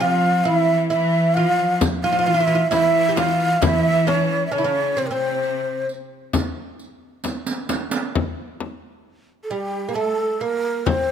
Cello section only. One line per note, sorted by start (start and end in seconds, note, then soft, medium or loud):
0.00 0.44 F3 medium
0.44 0.89 E3 medium
0.90 1.32 E3 medium
1.35 1.47 E3 medium
1.47 1.76 F3 medium
2.03 2.24 F3 medium
2.26 2.69 E3 medium
2.70 3.57 E3 medium
3.62 4.48 E3 medium
4.52 4.94 C#3 medium
4.97 5.10 C3 medium
5.11 5.84 C3 medium